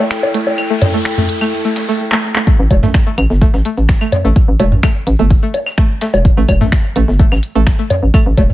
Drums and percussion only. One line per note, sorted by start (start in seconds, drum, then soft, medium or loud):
0.11 finger snap loud
0.11 snare loud
0.11 closed hi-hat medium
0.23 closed hi-hat soft
0.23 low woodblock medium
0.34 closed hi-hat medium
0.34 closed hi-hat loud
0.47 low woodblock medium
0.58 closed hi-hat medium
0.58 claves medium
0.82 closed hi-hat medium
0.82 mid tom medium
0.82 low woodblock medium
1.05 finger snap medium
1.05 snare loud
1.05 closed hi-hat medium
1.18 mid tom medium
1.29 closed hi-hat medium
1.29 closed hi-hat loud
1.41 closed hi-hat soft
1.41 claves medium
1.53 open hi-hat medium
1.65 closed hi-hat soft
1.76 snare loud
1.76 closed hi-hat medium
1.76 closed hi-hat loud
1.88 snare soft
2.12 clap medium
2.36 clap loud
2.47 kick loud
2.47 closed hi-hat medium
2.71 kick medium
2.71 closed hi-hat medium
2.71 low woodblock medium
2.83 snare medium
2.83 mid tom medium
2.94 finger snap loud
2.94 kick loud
2.94 snare loud
2.94 closed hi-hat medium
3.18 closed hi-hat medium
3.18 claves medium
3.30 snare soft
3.42 kick loud
3.42 closed hi-hat medium
3.54 snare medium
3.65 closed hi-hat medium
3.77 closed hi-hat soft
3.89 finger snap loud
3.89 kick loud
3.89 snare loud
3.89 closed hi-hat medium
4.01 closed hi-hat soft
4.01 claves medium
4.12 closed hi-hat medium
4.12 mid tom medium
4.12 low woodblock medium
4.36 kick loud
4.36 closed hi-hat medium
4.60 closed hi-hat medium
4.60 closed hi-hat loud
4.60 low woodblock medium
4.72 mid tom medium
4.83 finger snap loud
4.83 kick loud
4.83 snare loud
4.83 closed hi-hat medium
4.83 claves medium
5.07 closed hi-hat medium
5.07 closed hi-hat loud
5.19 closed hi-hat soft
5.30 kick loud
5.30 open hi-hat medium
5.43 closed hi-hat soft
5.54 closed hi-hat medium
5.54 closed hi-hat loud
5.54 low woodblock medium
5.66 snare soft
5.66 claves medium
5.78 finger snap loud
5.78 kick loud
5.78 closed hi-hat medium
6.01 snare loud
6.01 closed hi-hat loud
6.01 closed hi-hat medium
6.14 closed hi-hat medium
6.14 low woodblock medium
6.25 kick loud
6.25 closed hi-hat medium
6.49 kick medium
6.49 closed hi-hat medium
6.49 closed hi-hat loud
6.49 claves medium
6.49 low woodblock medium
6.61 snare medium
6.61 mid tom medium
6.72 finger snap loud
6.72 kick loud
6.72 snare loud
6.72 closed hi-hat medium
6.96 closed hi-hat medium
6.96 closed hi-hat loud
7.08 snare soft
7.19 kick loud
7.19 closed hi-hat medium
7.32 snare medium
7.32 claves medium
7.43 closed hi-hat medium
7.43 closed hi-hat loud
7.55 closed hi-hat soft
7.67 finger snap loud
7.67 kick loud
7.67 snare loud
7.67 closed hi-hat medium
7.79 closed hi-hat soft
7.90 closed hi-hat medium
7.90 closed hi-hat loud
7.90 mid tom medium
7.90 low woodblock medium
8.14 kick loud
8.14 closed hi-hat medium
8.14 claves medium
8.38 kick medium
8.38 closed hi-hat medium
8.38 low woodblock medium
8.50 mid tom medium